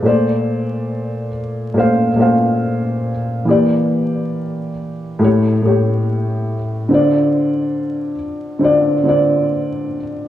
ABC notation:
X:1
M:4/4
L:1/8
Q:"Swing 16ths" 1/4=70
K:Bb
V:1 name="Felt piano"
[B,,A,cd]3 z [B,,A,cf] [B,,A,cf]2 z | [=E,B,Gd]3 z [A,,A,G^c] [A,,A,Gc]2 z | [D,CFd]3 z [D,CFd] [D,CFd]2 z |]